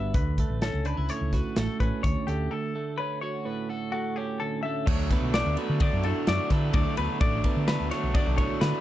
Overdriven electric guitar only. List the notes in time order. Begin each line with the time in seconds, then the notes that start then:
4.86 D3 F#3 A3 D4
5.09 F#3 A3 D4
5.33 D3 F#3 A3 D4
5.57 D3 F#3 A3 D4
5.80 D3 F#3 A3 D4
6.04 F#3 A3 D4
6.28 D3 F#3 A3 D4
6.51 F#3 A3 D4
6.73 D3 F#3 A3 D4
6.97 F#3 A3 D4
7.20 D3 F#3 A3 D4
7.44 F#3 A3 D4
7.67 D3 F#3 A3 D4
7.90 D3 F#3 A3 D4
8.14 D3 F#3 A3 D4
8.38 F#3 A3 D4
8.61 D3 F#3 A3 D4